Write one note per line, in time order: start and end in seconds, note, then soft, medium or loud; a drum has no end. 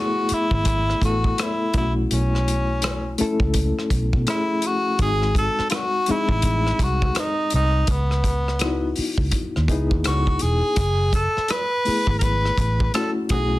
0.00 0.96 A3 medium
0.00 0.97 B3 medium
0.00 0.97 E4 medium
0.00 0.35 F#4 medium
0.00 1.75 G#4 medium
0.00 1.76 C#5 soft
0.29 muted fingered electric bass stroke soft
0.29 closed hi-hat medium
0.33 1.03 E4 medium
0.51 0.93 G#1 medium
0.51 kick medium
0.65 kick medium
0.65 closed hi-hat medium
0.90 cross-stick soft
1.02 1.32 A1 medium
1.02 1.30 A3 medium
1.02 1.30 B3 medium
1.02 1.31 E4 medium
1.02 1.43 F#4 medium
1.02 1.31 A4 medium
1.02 kick medium
1.02 closed hi-hat medium
1.24 kick medium
1.38 1.76 E4 medium
1.38 cross-stick medium
1.38 closed hi-hat medium
1.74 2.04 B1 medium
1.74 2.91 A3 medium
1.74 2.92 C#4 medium
1.74 2.92 E4 medium
1.74 1.93 E4 medium
1.74 2.93 F#4 medium
1.74 kick medium
1.74 closed hi-hat medium
2.11 3.15 B1 medium
2.11 3.16 C#4 medium
2.11 closed hi-hat medium
2.35 cross-stick soft
2.48 closed hi-hat medium
2.82 cross-stick medium
2.82 closed hi-hat medium
3.18 3.46 A3 medium
3.18 3.47 C#4 medium
3.18 3.47 E4 medium
3.18 3.48 A4 medium
3.18 muted fingered electric bass stroke soft
3.18 closed hi-hat medium
3.40 3.71 C#2 medium
3.40 kick medium
3.54 kick medium
3.54 closed hi-hat medium
3.79 cross-stick soft
3.90 4.09 B1 medium
3.90 kick medium
3.90 closed hi-hat medium
4.13 4.25 B2 medium
4.13 kick medium
4.27 4.55 A3 medium
4.27 4.55 C#4 medium
4.27 4.55 E4 medium
4.27 4.67 E4 medium
4.27 4.56 G#4 medium
4.27 cross-stick medium
4.27 closed hi-hat medium
4.62 5.00 F#4 medium
4.62 closed hi-hat medium
4.99 5.48 G#1 medium
4.99 5.27 G#3 medium
4.99 5.27 C4 medium
4.99 5.27 D#4 soft
4.99 5.28 F#4 medium
4.99 5.34 G#4 medium
4.99 kick loud
4.99 closed hi-hat medium
5.22 cross-stick soft
5.35 5.65 A4 medium
5.35 kick medium
5.35 closed hi-hat medium
5.59 muted fingered electric bass stroke soft
5.59 cross-stick soft
5.70 5.76 F4 medium
5.70 cross-stick medium
5.70 closed hi-hat medium
5.75 6.12 F#4 medium
6.06 6.36 G#3 medium
6.06 6.36 C4 medium
6.06 6.36 D#4 medium
6.06 muted fingered electric bass stroke soft
6.06 closed hi-hat medium
6.10 6.85 E4 loud
6.10 6.37 G#4 medium
6.29 6.71 A1 medium
6.29 kick medium
6.42 kick medium
6.42 closed hi-hat medium
6.67 cross-stick soft
6.79 7.10 C2 medium
6.79 7.20 F#4 medium
6.79 kick medium
6.79 closed hi-hat medium
7.02 kick medium
7.15 7.54 D#4 medium
7.15 cross-stick medium
7.15 closed hi-hat medium
7.50 7.83 C2 medium
7.50 closed hi-hat medium
7.55 7.92 D#4 medium
7.87 8.93 C#2 medium
7.87 8.98 B3 medium
7.87 kick loud
7.87 closed hi-hat medium
8.11 cross-stick soft
8.24 kick medium
8.24 closed hi-hat medium
8.48 cross-stick soft
8.59 8.89 B3 medium
8.59 8.89 D#4 medium
8.59 8.89 E4 medium
8.59 cross-stick medium
8.59 closed hi-hat medium
8.63 8.90 F#4 medium
8.96 muted fingered electric bass stroke soft
8.96 open hi-hat soft
9.18 9.30 C#2 medium
9.18 kick medium
9.31 kick medium
9.31 closed hi-hat medium
9.56 9.67 D#2 medium
9.56 cross-stick soft
9.68 9.88 C#2 medium
9.68 9.97 B3 medium
9.68 9.97 D#4 medium
9.68 9.98 E4 medium
9.68 9.98 G#4 medium
9.68 kick medium
9.68 closed hi-hat medium
9.91 10.03 D#2 medium
9.91 kick medium
10.04 10.36 C#2 medium
10.04 10.44 F#4 medium
10.04 cross-stick medium
10.04 closed hi-hat medium
10.27 kick medium
10.39 10.60 E1 medium
10.39 11.14 G#4 medium
10.39 closed hi-hat medium
10.76 11.26 F#1 medium
10.76 kick loud
10.76 closed hi-hat medium
11.13 11.52 A4 medium
11.13 kick medium
11.13 closed hi-hat medium
11.37 muted fingered electric bass stroke soft
11.37 cross-stick soft
11.48 12.17 B4 loud
11.48 cross-stick medium
11.48 closed hi-hat medium
11.85 12.13 A3 medium
11.85 12.14 B3 soft
11.85 12.14 E4 medium
11.85 12.14 G#4 medium
11.85 muted fingered electric bass stroke soft
11.85 open hi-hat soft
12.07 12.49 G#1 medium
12.07 kick medium
12.19 12.24 A#4 medium
12.19 kick medium
12.19 closed hi-hat medium
12.23 12.94 B4 medium
12.45 cross-stick soft
12.58 12.88 A1 medium
12.58 kick medium
12.58 closed hi-hat medium
12.80 kick medium
12.94 13.22 A3 medium
12.94 13.22 C#4 medium
12.94 13.23 E4 medium
12.94 13.23 F#4 medium
12.94 13.10 A4 medium
12.94 cross-stick medium
12.94 closed hi-hat medium
13.29 13.59 B1 medium
13.29 13.59 A3 medium
13.29 13.59 C#4 medium
13.29 13.39 D#4 soft
13.29 13.59 G#4 medium
13.29 kick medium
13.29 closed hi-hat medium
13.33 13.59 F#4 medium
13.39 13.59 E4 medium